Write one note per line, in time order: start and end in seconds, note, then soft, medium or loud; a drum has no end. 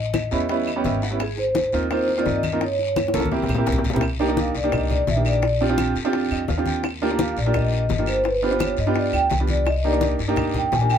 0.00 0.26 A1 medium
0.00 0.99 D#5 loud
0.13 high bongo medium
0.13 high conga loud
0.13 short guiro medium
0.13 claves medium
0.31 0.81 E2 medium
0.31 0.44 G3 medium
0.31 0.44 B3 medium
0.31 0.44 C#4 medium
0.31 0.44 E4 medium
0.31 high conga soft
0.31 short guiro medium
0.49 0.68 G3 medium
0.49 0.68 B3 medium
0.49 0.68 C#4 medium
0.49 0.68 E4 loud
0.49 high bongo medium
0.49 high conga soft
0.49 long guiro medium
0.67 high bongo soft
0.67 high conga soft
0.67 claves medium
0.76 1.01 G3 medium
0.76 1.01 B3 medium
0.76 1.01 C#4 medium
0.76 1.01 G4 medium
0.84 1.67 G#1 medium
0.84 1.01 E5 medium
0.84 high bongo soft
0.84 low bongo medium
0.84 high conga medium
0.84 short guiro medium
1.02 1.19 F#5 medium
1.02 high bongo soft
1.02 short guiro medium
1.11 1.20 G3 medium
1.11 1.20 B3 medium
1.11 1.20 C#4 medium
1.11 1.20 E4 medium
1.20 1.39 G#4 medium
1.20 high bongo medium
1.20 high conga soft
1.20 long guiro medium
1.20 claves medium
1.37 1.71 C5 medium
1.37 high bongo soft
1.37 high conga soft
1.55 high bongo medium
1.55 high conga loud
1.55 short guiro medium
1.72 2.22 D#2 medium
1.72 1.85 A#3 medium
1.72 1.85 C4 medium
1.72 1.86 D#4 medium
1.72 1.86 F4 medium
1.72 high conga soft
1.72 short guiro medium
1.90 2.09 A#3 medium
1.90 2.09 C4 medium
1.90 2.09 D#4 medium
1.90 2.10 F4 medium
1.90 2.18 C5 medium
1.90 high bongo medium
1.90 high conga soft
1.90 long guiro medium
1.90 claves medium
2.08 high bongo soft
2.08 high conga soft
2.18 2.42 A#3 medium
2.18 2.42 C4 medium
2.18 2.42 D#4 medium
2.18 2.42 F4 medium
2.18 2.27 D5 medium
2.26 3.08 G2 medium
2.26 2.60 D#5 medium
2.26 high bongo soft
2.26 low bongo medium
2.26 high conga medium
2.26 short guiro medium
2.43 high bongo soft
2.43 high conga medium
2.43 short guiro medium
2.43 claves medium
2.53 2.61 A#3 medium
2.53 2.61 C4 medium
2.53 2.62 D#4 medium
2.53 2.62 F4 medium
2.61 3.12 C#5 medium
2.61 high bongo medium
2.61 high conga soft
2.61 long guiro medium
2.78 high bongo soft
2.78 high conga soft
2.96 high bongo medium
2.96 high conga loud
2.96 short guiro medium
2.96 claves medium
3.08 high bongo medium
3.14 3.47 C2 medium
3.14 3.26 A#3 medium
3.14 3.26 C#4 medium
3.14 3.26 F4 medium
3.14 3.27 A4 medium
3.14 high conga loud
3.14 short guiro medium
3.20 high bongo medium
3.25 high conga medium
3.31 3.50 A#3 medium
3.31 3.50 C4 medium
3.31 3.51 E4 medium
3.31 3.51 G4 loud
3.31 low bongo medium
3.31 long guiro medium
3.43 low bongo medium
3.49 3.66 A#1 medium
3.49 low conga medium
3.49 claves medium
3.55 3.83 A#3 medium
3.55 3.83 C4 medium
3.55 3.83 E4 medium
3.55 3.83 G4 medium
3.55 low bongo medium
3.66 4.50 C2 medium
3.66 low bongo medium
3.66 short guiro medium
3.72 low conga medium
3.78 low bongo medium
3.84 low conga medium
3.84 short guiro medium
3.90 4.02 A#3 medium
3.90 4.02 C4 medium
3.90 low bongo medium
3.94 4.03 E4 medium
3.94 4.03 G4 loud
3.94 low conga medium
4.01 high bongo medium
4.01 high conga soft
4.01 long guiro medium
4.01 claves medium
4.19 4.26 A#3 medium
4.19 4.26 D4 medium
4.19 4.26 D#4 medium
4.19 4.26 G4 loud
4.19 high conga soft
4.28 4.53 A#3 medium
4.28 4.53 D4 medium
4.28 4.53 D#4 medium
4.28 4.53 G4 medium
4.37 4.55 F5 medium
4.37 high bongo medium
4.37 high conga loud
4.37 short guiro medium
4.55 5.04 C2 medium
4.55 4.73 D5 medium
4.55 high bongo soft
4.55 high conga soft
4.55 short guiro medium
4.64 5.01 A#3 medium
4.64 5.01 D4 medium
4.64 5.01 D#4 medium
4.64 5.01 G4 medium
4.72 4.90 D#5 medium
4.72 high bongo medium
4.72 high conga soft
4.72 low conga medium
4.72 long guiro medium
4.72 claves medium
4.90 5.07 D5 medium
4.90 high bongo soft
4.90 high conga soft
4.90 low conga medium
5.07 5.90 A#1 medium
5.07 5.26 E5 medium
5.07 high bongo soft
5.07 low bongo medium
5.07 high conga medium
5.07 short guiro medium
5.16 5.43 A#3 medium
5.16 5.43 D4 medium
5.16 5.43 D#4 medium
5.16 5.43 G4 medium
5.25 5.59 D5 medium
5.25 high bongo soft
5.25 short guiro medium
5.25 claves medium
5.42 high bongo medium
5.42 high conga soft
5.42 long guiro medium
5.60 5.67 C4 medium
5.60 5.67 D4 medium
5.60 5.67 F4 medium
5.60 5.67 G4 medium
5.60 high conga soft
5.69 5.94 C4 medium
5.69 5.94 D4 medium
5.69 5.94 F4 medium
5.69 5.95 G4 loud
5.78 high bongo medium
5.78 high conga loud
5.78 short guiro medium
5.78 claves medium
5.95 6.28 F2 medium
5.95 high bongo soft
5.95 high conga soft
5.95 short guiro medium
6.05 6.42 C4 loud
6.05 6.42 D4 loud
6.05 6.42 F4 medium
6.05 6.42 G4 loud
6.13 high bongo medium
6.13 high conga soft
6.13 long guiro medium
6.31 6.47 F2 medium
6.31 6.48 D#5 medium
6.31 high bongo soft
6.31 high conga soft
6.31 claves medium
6.48 7.31 D#2 medium
6.48 6.65 F5 medium
6.48 high bongo soft
6.48 low bongo medium
6.48 high conga medium
6.48 short guiro medium
6.57 6.84 C4 medium
6.57 6.84 D4 medium
6.57 6.84 F4 medium
6.57 6.84 G4 medium
6.66 6.83 G5 medium
6.66 high bongo soft
6.66 high conga medium
6.66 short guiro medium
6.83 high bongo medium
6.83 high conga soft
6.83 long guiro medium
6.83 claves medium
7.01 7.08 A#3 loud
7.01 7.08 D4 medium
7.01 7.08 F4 medium
7.01 7.08 G4 loud
7.01 high conga soft
7.11 7.35 A#3 medium
7.11 7.35 D4 medium
7.11 7.36 F4 medium
7.11 7.36 G4 medium
7.19 7.37 F5 medium
7.19 high bongo medium
7.19 high conga loud
7.19 short guiro medium
7.37 7.86 A#1 medium
7.37 7.55 D5 medium
7.37 high bongo soft
7.37 high conga soft
7.37 short guiro medium
7.46 7.83 A#3 medium
7.46 7.83 D4 medium
7.46 7.83 F4 medium
7.46 7.83 G4 medium
7.54 8.04 D#5 loud
7.54 high bongo medium
7.54 high conga soft
7.54 low conga medium
7.54 long guiro medium
7.54 claves medium
7.72 high bongo soft
7.72 high conga soft
7.89 8.72 G1 medium
7.89 high bongo soft
7.89 low bongo medium
7.89 high conga medium
7.89 short guiro medium
7.99 8.25 A#3 medium
7.99 8.25 D4 medium
7.99 8.25 F4 medium
7.99 8.25 G4 medium
8.06 8.25 C5 medium
8.06 high bongo soft
8.06 short guiro medium
8.06 claves medium
8.24 8.43 B4 medium
8.24 high bongo medium
8.24 high conga soft
8.24 long guiro medium
8.42 8.49 B3 medium
8.42 8.49 D4 medium
8.42 8.49 F4 medium
8.42 8.49 G4 medium
8.42 8.60 C5 medium
8.42 high conga soft
8.51 8.76 B3 medium
8.51 8.76 D4 medium
8.51 8.76 F4 medium
8.51 8.76 G4 medium
8.59 8.79 C#5 medium
8.59 high bongo medium
8.59 high conga loud
8.59 short guiro medium
8.59 claves medium
8.77 9.11 G2 medium
8.77 8.96 D#5 medium
8.77 high bongo soft
8.77 high conga soft
8.77 short guiro medium
8.87 9.24 B3 medium
8.87 9.24 D4 medium
8.87 9.24 F4 medium
8.87 9.24 G4 loud
8.94 9.14 D5 medium
8.94 high bongo medium
8.94 high conga soft
8.94 long guiro medium
9.13 9.29 D2 medium
9.13 9.25 G5 medium
9.13 high bongo soft
9.13 high conga soft
9.13 claves medium
9.30 10.13 C2 medium
9.30 high bongo soft
9.30 low bongo medium
9.30 high conga medium
9.30 short guiro medium
9.40 9.66 B3 medium
9.40 9.67 D4 medium
9.40 9.67 F4 medium
9.40 9.67 G4 medium
9.47 9.67 D5 medium
9.47 high bongo soft
9.47 high conga medium
9.47 short guiro medium
9.65 9.84 D#5 medium
9.65 high bongo medium
9.65 high conga soft
9.65 long guiro medium
9.65 claves medium
9.84 9.90 A#3 medium
9.84 9.90 D4 medium
9.84 9.91 D#4 medium
9.84 9.91 G4 medium
9.84 10.02 D5 medium
9.84 high conga soft
9.93 10.18 A#3 medium
9.93 10.17 D4 medium
9.93 10.18 D#4 medium
9.93 10.18 G4 medium
10.01 high bongo medium
10.01 high conga loud
10.01 short guiro medium
10.19 10.69 G2 medium
10.19 high bongo soft
10.19 high conga soft
10.19 short guiro medium
10.28 10.65 A#3 medium
10.28 10.65 D4 medium
10.28 10.65 D#4 medium
10.28 10.66 G4 loud
10.36 high bongo medium
10.36 high conga soft
10.36 low conga medium
10.36 long guiro medium
10.36 claves medium
10.54 10.73 G5 medium
10.54 high bongo soft
10.54 high conga soft
10.54 low conga medium
10.72 10.98 A#1 medium
10.72 10.90 G#5 medium
10.72 high bongo soft
10.72 low bongo medium
10.72 high conga medium
10.72 short guiro medium
10.81 10.98 A#3 medium
10.81 10.98 D4 medium
10.81 10.98 D#4 medium
10.81 10.98 G4 medium
10.90 10.98 G5 loud
10.90 high bongo soft
10.90 short guiro medium
10.90 claves medium